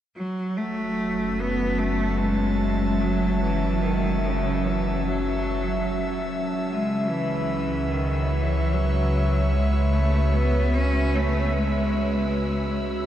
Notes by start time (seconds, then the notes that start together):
0.16 F#1 F#3 F#4 E6
0.57 A3
1.04 C#4
1.39 B3 A5
1.79 A3
2.19 G#3
2.38 E5
3.00 F#3
3.42 E3
3.82 D#3
4.25 C#3
4.65 E3
5.06 F#3
6.68 C#2 C#3 G#3
6.84 B4
7.09 E3
7.77 C#5
7.91 D#3
8.31 E3
8.73 F#3
9.52 G#3
9.93 A3
10.32 B3
10.74 C#4
11.15 A3
11.53 G#3